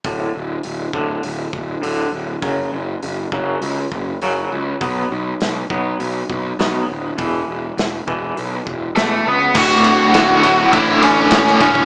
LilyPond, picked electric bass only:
\new Staff \with { instrumentName = "Picked electric bass" } { \clef bass \time 4/4 \key d \major \tempo 4 = 101 d,,8 d,,8 d,,8 d,,8 d,,8 d,,8 d,,8 d,,8 | fis,,8 fis,,8 fis,,8 fis,,8 cis,8 fis,,8 fis,,8 cis,8 | b,,8 b,,8 b,,8 b,,8 b,,8 b,,8 b,,8 d,,8 | e,,8 e,,8 e,,8 e,,8 b,,8 e,,8 e,,8 cis,8 |
d,,4 d,,8 d,,8 a,,8 a,,8 a,,8 e,,8 | }